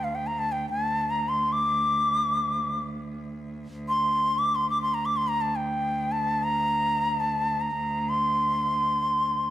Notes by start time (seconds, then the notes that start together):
Already playing: D2
0.04 F5
0.15 G5
0.27 A#5
0.39 A5
0.52 G5
0.70 A5
1.10 A#5
1.29 C6
1.52 D6
3.73 D2
3.88 C6
4.38 D6
4.55 C6
4.70 D6
4.82 C6
4.94 A#5
5.05 D6
5.17 C6
5.28 A#5
5.41 A5
5.56 G5
6.12 A5
6.43 A#5
7.20 A5
7.61 A#5
8.09 C6